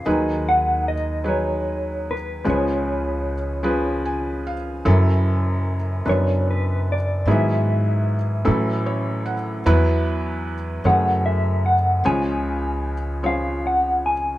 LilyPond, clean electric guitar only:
\new Staff \with { instrumentName = "Clean electric guitar" } { \time 6/8 \key cis \phrygian \tempo 4. = 50 r8 fis''8 dis''8 cis''4 b'8 | cis''2~ cis''8 r8 | \key fis \minor r4. cis''8 b'8 d''8 | e''2~ e''8 r8 |
r4. fis''8 e''8 fis''8 | gis''4. eis''8 fis''8 gis''8 | }